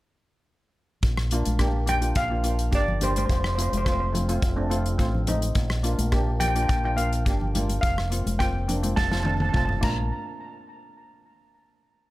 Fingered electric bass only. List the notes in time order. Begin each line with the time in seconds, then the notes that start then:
1.03 A#1
1.46 A#1
2.16 A#1
2.72 G1
3.29 F1
3.72 F1
4.42 F1
4.99 A1
5.56 A#1
5.98 A#1
6.69 A#1
7.26 G1
7.83 F1
8.26 F1
8.97 F1
9.54 F1
9.83 A#1